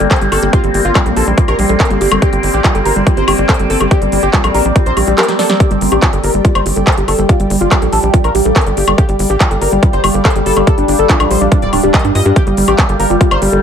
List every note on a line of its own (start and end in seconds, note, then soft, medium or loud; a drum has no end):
0.00 0.07 G1 medium
0.00 0.07 G3 medium
0.00 5.61 A#3 medium
0.00 5.62 C4 medium
0.00 13.62 G4 medium
0.00 0.07 A4 medium
0.00 13.62 D5 medium
0.00 6.36 C6 medium
0.00 closed hi-hat soft
0.11 0.18 A4 medium
0.11 0.18 C5 medium
0.11 kick loud
0.11 clap loud
0.11 closed hi-hat soft
0.16 closed hi-hat medium
0.21 0.28 G1 medium
0.21 0.28 G3 medium
0.21 0.28 A4 medium
0.21 closed hi-hat medium
0.32 0.38 G1 medium
0.32 0.42 G4 medium
0.32 0.39 A4 medium
0.32 open hi-hat loud
0.32 high woodblock soft
0.43 0.49 G1 medium
0.43 0.49 G3 medium
0.43 0.49 A4 loud
0.43 closed hi-hat soft
0.53 0.60 F4 loud
0.53 0.60 G4 medium
0.53 kick loud
0.53 closed hi-hat medium
0.64 0.70 G1 medium
0.64 0.70 G3 medium
0.64 0.68 G4 medium
0.64 closed hi-hat medium
0.74 0.81 G1 loud
0.74 0.81 G3 medium
0.74 open hi-hat loud
0.85 0.91 G1 loud
0.85 0.91 F4 medium
0.85 closed hi-hat medium
0.95 1.02 G3 medium
0.95 1.05 F4 medium
0.95 kick loud
0.95 clap loud
0.95 closed hi-hat medium
0.95 high woodblock medium
1.06 1.12 A#1 medium
1.06 1.13 G3 medium
1.06 1.13 A4 medium
1.06 closed hi-hat medium
1.16 1.23 A#1 loud
1.16 1.21 G4 medium
1.16 1.23 A4 medium
1.16 open hi-hat loud
1.27 1.34 A#1 medium
1.27 1.34 G3 medium
1.27 closed hi-hat medium
1.38 1.44 G3 medium
1.38 1.42 F4 medium
1.38 kick loud
1.38 closed hi-hat medium
1.48 1.55 A#1 medium
1.48 1.52 G4 medium
1.48 1.55 A#4 medium
1.48 closed hi-hat medium
1.48 high woodblock soft
1.59 1.65 A#1 loud
1.59 1.65 G3 medium
1.59 1.63 G4 medium
1.59 open hi-hat loud
1.69 1.76 A#1 loud
1.69 1.76 G3 medium
1.69 1.76 A4 medium
1.69 closed hi-hat medium
1.80 1.86 A#4 medium
1.80 kick loud
1.80 clap loud
1.80 closed hi-hat soft
1.85 closed hi-hat medium
1.90 1.97 G1 medium
1.90 1.97 G3 medium
1.90 1.97 A4 medium
1.90 closed hi-hat medium
2.01 2.07 G1 loud
2.01 2.08 G4 medium
2.01 2.11 G4 medium
2.01 open hi-hat loud
2.11 2.18 G1 medium
2.11 2.18 G3 medium
2.11 2.18 A4 loud
2.11 closed hi-hat medium
2.11 high woodblock medium
2.22 2.29 G4 loud
2.22 2.29 G4 medium
2.22 kick loud
2.22 closed hi-hat medium
2.33 2.39 G1 medium
2.33 2.39 G3 medium
2.33 2.37 G4 medium
2.33 closed hi-hat medium
2.43 2.50 G1 loud
2.43 2.50 G3 medium
2.43 open hi-hat loud
2.54 2.60 A1 loud
2.54 2.60 G4 medium
2.64 2.71 G3 medium
2.64 2.74 F4 medium
2.64 kick loud
2.64 clap loud
2.64 closed hi-hat medium
2.64 high woodblock soft
2.75 2.81 G1 medium
2.75 2.82 G3 medium
2.75 2.82 A4 medium
2.75 closed hi-hat medium
2.85 2.92 G1 loud
2.85 2.90 G4 medium
2.85 2.92 A#4 medium
2.85 open hi-hat loud
2.96 3.03 G1 medium
2.96 3.03 G3 medium
2.96 closed hi-hat medium
3.07 3.13 G3 medium
3.07 3.11 F4 medium
3.07 kick loud
3.07 closed hi-hat medium
3.17 3.24 G1 medium
3.17 3.21 G4 medium
3.17 3.24 C5 medium
3.17 closed hi-hat medium
3.28 3.34 G1 loud
3.28 3.34 G3 medium
3.28 3.32 G4 medium
3.28 open hi-hat medium
3.28 high woodblock medium
3.38 3.45 G1 loud
3.38 3.45 G3 medium
3.38 3.45 A4 medium
3.38 closed hi-hat medium
3.49 3.56 A4 medium
3.49 3.56 C5 medium
3.49 kick loud
3.49 clap loud
3.49 closed hi-hat soft
3.54 closed hi-hat medium
3.59 3.66 G1 medium
3.59 3.66 G3 medium
3.59 3.66 A4 medium
3.59 closed hi-hat medium
3.70 3.76 G1 loud
3.70 3.80 G4 medium
3.70 3.77 A4 medium
3.70 open hi-hat loud
3.80 3.87 G1 loud
3.80 3.87 G3 medium
3.80 3.87 A4 loud
3.80 closed hi-hat medium
3.80 high woodblock soft
3.91 3.98 G4 medium
3.91 3.98 G4 loud
3.91 kick loud
3.91 closed hi-hat medium
4.02 4.08 G1 medium
4.02 4.08 G3 medium
4.02 4.06 G4 medium
4.02 closed hi-hat medium
4.12 4.19 G1 loud
4.12 4.19 G3 medium
4.12 open hi-hat loud
4.23 4.29 G1 medium
4.23 4.29 G4 loud
4.23 closed hi-hat medium
4.33 4.40 G3 medium
4.33 4.43 F4 medium
4.33 kick loud
4.33 clap loud
4.33 closed hi-hat medium
4.44 4.50 A#1 medium
4.44 4.51 G3 medium
4.44 4.51 A4 medium
4.44 closed hi-hat medium
4.44 high woodblock medium
4.54 4.61 A#1 loud
4.54 4.59 G4 medium
4.54 4.61 A#4 medium
4.54 open hi-hat loud
4.65 4.72 A#1 medium
4.65 4.72 G3 medium
4.65 closed hi-hat medium
4.76 4.82 G3 medium
4.76 4.80 F4 medium
4.76 kick loud
4.76 closed hi-hat medium
4.86 4.93 A#1 medium
4.86 4.90 G4 medium
4.86 4.93 C5 medium
4.86 closed hi-hat medium
4.97 5.03 A#1 loud
4.97 5.03 G3 medium
4.97 5.01 G4 medium
4.97 open hi-hat loud
4.97 high woodblock soft
5.07 5.14 A#1 medium
5.07 5.14 G3 medium
5.07 5.14 G4 loud
5.07 closed hi-hat medium
5.18 5.28 G4 loud
5.18 5.25 A#4 medium
5.18 snare medium
5.18 clap loud
5.18 closed hi-hat medium
5.23 closed hi-hat medium
5.28 5.35 G3 medium
5.28 5.38 A#4 medium
5.28 snare medium
5.28 closed hi-hat medium
5.39 5.46 A4 medium
5.39 5.43 D5 loud
5.39 snare medium
5.39 open hi-hat loud
5.50 5.56 G3 medium
5.50 5.59 G4 medium
5.50 snare medium
5.50 closed hi-hat medium
5.60 13.62 G3 medium
5.60 5.67 G4 loud
5.60 12.38 G4 medium
5.60 kick loud
5.60 closed hi-hat medium
5.71 5.77 G1 medium
5.71 5.77 G3 medium
5.71 5.75 G4 medium
5.71 closed hi-hat medium
5.81 5.88 G1 loud
5.81 5.88 G3 medium
5.81 open hi-hat loud
5.92 5.98 A1 loud
5.92 5.99 G4 medium
5.92 closed hi-hat medium
5.92 high woodblock soft
6.02 6.09 G3 medium
6.02 6.12 F4 medium
6.02 kick loud
6.02 clap loud
6.02 closed hi-hat medium
6.13 6.19 G1 medium
6.13 6.20 G3 medium
6.13 6.20 A4 medium
6.13 closed hi-hat medium
6.21 6.30 G1 loud
6.21 6.28 G4 medium
6.21 6.30 A#4 loud
6.21 13.62 F5 medium
6.21 open hi-hat loud
6.34 6.41 G1 medium
6.34 6.41 G3 medium
6.34 closed hi-hat medium
6.45 6.51 G3 medium
6.45 6.49 F4 medium
6.45 kick loud
6.45 closed hi-hat medium
6.55 6.62 G1 medium
6.55 6.62 C5 medium
6.55 6.65 D5 medium
6.55 closed hi-hat medium
6.55 high woodblock medium
6.66 6.72 G1 loud
6.66 6.72 G3 medium
6.66 6.70 G4 medium
6.66 open hi-hat loud
6.76 6.83 G1 medium
6.76 6.83 G3 medium
6.76 6.83 A4 medium
6.87 6.94 A4 medium
6.87 6.94 C5 medium
6.87 kick loud
6.87 clap loud
6.87 closed hi-hat soft
6.92 closed hi-hat medium
6.97 7.04 G1 medium
6.97 7.04 G3 medium
6.97 7.04 A4 medium
6.97 closed hi-hat medium
7.08 7.15 G1 loud
7.08 7.18 G4 medium
7.08 7.15 A4 medium
7.08 open hi-hat loud
7.08 high woodblock soft
7.19 7.25 G1 medium
7.19 7.25 G3 medium
7.19 7.25 A4 loud
7.19 closed hi-hat medium
7.29 7.36 F4 loud
7.29 7.36 G4 medium
7.29 kick loud
7.29 closed hi-hat medium
7.40 7.46 G1 medium
7.40 7.46 G3 medium
7.40 7.44 G4 medium
7.40 closed hi-hat medium
7.50 7.57 G1 loud
7.50 7.57 G3 medium
7.50 open hi-hat loud
7.61 7.67 G1 medium
7.61 7.68 F4 medium
7.61 closed hi-hat medium
7.71 7.78 G3 medium
7.71 7.81 F4 medium
7.71 kick loud
7.71 clap loud
7.71 closed hi-hat medium
7.71 high woodblock medium
7.82 7.88 A#1 medium
7.82 7.89 G3 medium
7.82 7.89 A4 medium
7.82 closed hi-hat medium
7.93 7.99 A#1 loud
7.93 7.97 G4 medium
7.93 7.99 A4 medium
7.93 open hi-hat loud
8.03 8.10 A#1 medium
8.03 8.10 G3 medium
8.03 closed hi-hat medium
8.14 8.20 G3 medium
8.14 8.18 F4 medium
8.14 kick loud
8.14 closed hi-hat medium
8.24 8.31 A#1 medium
8.24 8.31 A#4 medium
8.24 8.34 D5 medium
8.24 closed hi-hat medium
8.24 high woodblock soft
8.35 8.41 A#1 loud
8.35 8.41 G3 medium
8.35 8.39 G4 medium
8.35 open hi-hat loud
8.45 8.52 A#1 medium
8.45 8.52 G3 medium
8.45 8.52 A4 medium
8.45 closed hi-hat medium
8.56 8.63 A#4 medium
8.56 kick loud
8.56 clap loud
8.56 closed hi-hat soft
8.61 closed hi-hat medium
8.66 8.73 G1 medium
8.66 8.73 G3 medium
8.66 8.73 A4 medium
8.66 closed hi-hat medium
8.77 8.84 G1 loud
8.77 8.84 G4 medium
8.77 8.87 G4 medium
8.77 open hi-hat loud
8.88 8.94 G1 medium
8.88 8.94 G3 medium
8.88 8.94 A4 loud
8.88 closed hi-hat medium
8.88 high woodblock medium
8.98 9.05 G4 medium
8.98 9.05 G4 loud
8.98 kick loud
8.98 closed hi-hat medium
9.09 9.15 G1 medium
9.09 9.15 G3 medium
9.09 9.13 G4 medium
9.09 closed hi-hat medium
9.19 9.26 G1 loud
9.19 9.26 G3 medium
9.19 open hi-hat loud
9.30 9.36 A1 loud
9.30 9.37 G4 medium
9.30 closed hi-hat medium
9.40 9.47 G3 medium
9.40 9.50 F4 medium
9.40 kick loud
9.40 clap loud
9.40 closed hi-hat medium
9.40 high woodblock soft
9.51 9.57 G1 medium
9.51 9.58 G3 medium
9.51 9.58 A4 medium
9.51 closed hi-hat medium
9.62 9.68 G1 loud
9.62 9.66 G4 medium
9.62 9.68 A#4 loud
9.62 open hi-hat loud
9.72 9.79 G1 medium
9.72 9.79 G3 medium
9.72 closed hi-hat medium
9.83 9.89 G3 medium
9.83 9.87 F4 medium
9.83 kick loud
9.83 closed hi-hat medium
9.93 10.00 G1 medium
9.93 10.00 C5 medium
9.93 10.03 D5 medium
9.93 closed hi-hat soft
10.04 10.10 G1 loud
10.04 10.10 G3 medium
10.04 10.08 G4 medium
10.04 open hi-hat loud
10.04 high woodblock medium
10.14 10.21 G1 loud
10.14 10.21 G3 medium
10.14 10.21 A4 medium
10.14 closed hi-hat medium
10.25 10.32 A4 medium
10.25 10.32 C5 medium
10.25 kick loud
10.25 clap loud
10.25 closed hi-hat soft
10.30 closed hi-hat medium
10.35 10.42 G1 medium
10.35 10.42 G3 medium
10.35 10.42 A4 medium
10.35 closed hi-hat medium
10.46 10.53 G1 loud
10.46 10.56 G4 medium
10.46 10.53 A4 medium
10.46 open hi-hat loud
10.57 10.63 G1 medium
10.57 10.63 G3 medium
10.57 10.64 A4 loud
10.57 closed hi-hat medium
10.57 high woodblock soft
10.67 10.74 G4 medium
10.67 10.74 A4 loud
10.67 kick loud
10.67 closed hi-hat medium
10.78 10.84 G1 medium
10.78 10.84 D4 medium
10.78 10.82 G4 medium
10.78 closed hi-hat soft
10.88 10.95 G1 loud
10.88 10.95 D4 medium
10.88 open hi-hat loud
10.99 11.05 G1 medium
10.99 11.06 A4 loud
10.99 closed hi-hat soft
11.09 11.16 D4 medium
11.09 11.19 F4 medium
11.09 kick loud
11.09 clap loud
11.09 closed hi-hat medium
11.20 11.26 A#1 medium
11.20 11.27 D4 medium
11.20 11.27 A4 medium
11.20 closed hi-hat soft
11.20 high woodblock medium
11.31 11.37 A#1 loud
11.31 11.35 G4 medium
11.31 11.37 C5 medium
11.31 open hi-hat loud
11.41 11.48 A#1 medium
11.41 11.48 D4 medium
11.41 closed hi-hat medium
11.52 11.58 D4 medium
11.52 11.56 F4 medium
11.52 kick loud
11.52 closed hi-hat medium
11.62 11.69 D1 medium
11.62 11.72 D5 medium
11.62 11.69 D5 medium
11.62 closed hi-hat soft
11.73 11.79 D1 loud
11.73 11.80 D4 medium
11.73 11.83 G5 medium
11.73 open hi-hat loud
11.73 high woodblock soft
11.83 11.90 D1 loud
11.83 11.90 D4 medium
11.83 11.93 G4 loud
11.83 closed hi-hat soft
11.94 12.01 D#5 medium
11.94 kick loud
11.94 clap loud
11.94 closed hi-hat soft
11.99 closed hi-hat medium
12.04 12.11 G2 medium
12.04 12.11 D4 medium
12.04 12.11 G5 medium
12.04 closed hi-hat soft
12.15 12.22 G2 loud
12.15 12.19 F4 medium
12.15 12.22 D#5 medium
12.15 open hi-hat loud
12.26 12.32 G2 medium
12.26 12.32 D4 medium
12.26 12.30 G4 loud
12.26 closed hi-hat soft
12.36 12.43 G4 loud
12.36 12.43 G4 medium
12.36 13.62 A#4 medium
12.36 kick loud
12.36 closed hi-hat medium
12.47 12.53 G1 medium
12.47 12.53 G3 medium
12.47 12.51 G4 medium
12.47 closed hi-hat soft
12.57 12.64 G1 medium
12.57 12.64 G3 medium
12.57 open hi-hat loud
12.68 12.74 A1 medium
12.68 12.75 G4 medium
12.68 closed hi-hat soft
12.68 high woodblock soft
12.78 12.85 G3 medium
12.78 kick loud
12.78 clap loud
12.78 closed hi-hat medium
12.89 12.95 G1 medium
12.89 12.96 G3 medium
12.89 12.96 A4 medium
12.89 closed hi-hat soft
13.00 13.06 G1 loud
13.00 13.04 G4 medium
13.00 13.06 A#4 loud
13.00 open hi-hat loud
13.10 13.17 G1 medium
13.10 13.17 G3 medium
13.10 13.20 F4 medium
13.10 closed hi-hat medium
13.21 13.27 G3 medium
13.21 13.25 F4 medium
13.21 kick loud
13.21 closed hi-hat medium
13.31 13.38 G1 medium
13.31 13.38 C5 medium
13.31 13.41 D5 medium
13.31 closed hi-hat soft
13.31 high woodblock medium
13.42 13.48 G1 loud
13.42 13.49 G3 medium
13.42 13.46 G4 medium
13.42 open hi-hat loud
13.52 13.59 G1 medium
13.52 13.59 G3 medium
13.52 13.59 A4 medium